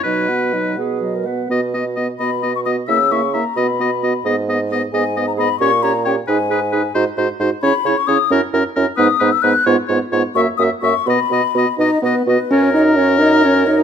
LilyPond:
<<
  \new Staff \with { instrumentName = "Flute" } { \time 6/8 \key b \major \tempo 4. = 87 dis''8 fis''8 dis''8 fis''8 dis''8 fis''8 | r4. b''8. cis'''16 dis'''8 | e'''8 cis'''8 ais''8 b''4. | r4. gis''8. ais''16 b''8 |
des'''8 bes''8 g''8 gis''4. | r4. b''8. cis'''16 dis'''8 | r4. dis'''8. e'''16 fis'''8 | r4. cis'''8 dis'''8 cis'''8 |
b''4. dis''8 b'8 b'8 | \key fis \major cis''8 dis''8 cis''8 dis''8 cis''8 dis''8 | }
  \new Staff \with { instrumentName = "Oboe" } { \time 6/8 \key b \major b'4. r4. | dis''8 dis''8 dis''8 dis''8 dis''8 dis''8 | e''8 e''8 e''8 dis''8 dis''8 dis''8 | dis''8 dis''8 dis''8 dis''8 dis''8 dis''8 |
des''8 des''8 des''8 b'8 b'8 b'8 | bis'8 bis'8 bis'8 cis''8 cis''8 cis''8 | ais'8 ais'8 ais'8 b'8 b'8 b'8 | cis''8 cis''8 cis''8 e''8 e''8 e''8 |
dis''8 dis''8 dis''8 dis''8 dis''8 dis''8 | \key fis \major ais'2. | }
  \new Staff \with { instrumentName = "Clarinet" } { \time 6/8 \key b \major dis'8 fis'8 dis'8 gis'8. ais'16 b'8 | fis'8 fis'8 fis'8 fis'8 fis'8 fis'8 | e'8 e'8 e'8 fis'8 fis'8 fis'8 | gis'8 gis'8 gis'8 gis'8 gis'8 gis'8 |
g'8 g'8 g'8 gis'8 gis'8 gis'8 | fis'8 fis'8 fis'8 e'8 e'8 e'8 | e'8 e'8 e'8 dis'8 dis'8 dis'8 | eis'8 eis'8 eis'8 fis'8 fis'8 fis'8 |
fis'8 fis'8 fis'8 fis'8 fis'8 fis'8 | \key fis \major cis''16 ais'16 cis''16 ais'16 cis''16 ais'16 cis''16 ais'16 cis''16 ais'16 cis''16 ais'16 | }
  \new Staff \with { instrumentName = "French horn" } { \time 6/8 \key b \major fis8 b8 fis8 b8 fis8 b8 | b8 b8 b8 b8 b8 b8 | ais8 ais8 ais8 b8 b8 b8 | b8 b8 b8 b8 b8 b8 |
des'8 des'8 des'8 dis'8 dis'8 dis'8 | dis'8 dis'8 dis'8 cis'8 cis'8 cis'8 | cis'8 cis'8 cis'8 b8 b8 b8 | b8 b8 b8 ais8 ais8 ais8 |
b8 b8 b8 dis'8 b8 b8 | \key fis \major cis'8 dis'8 cis'8 dis'8 cis'8 dis'8 | }
  \new Staff \with { instrumentName = "Bassoon" } { \clef bass \time 6/8 \key b \major b,4. b,4. | b,4. b,4. | cis4. b,4. | gis,4. gis,4. |
bes,4. gis,4. | gis,8 gis,8 gis,8 cis8 cis8 cis8 | fis,8 fis,8 fis,8 gis,8 gis,8 gis,8 | gis,8 gis,8 gis,8 fis,8 fis,8 fis,8 |
b,8 b,8 b,8 b,8 b,8 b,8 | \key fis \major fis,2. | }
>>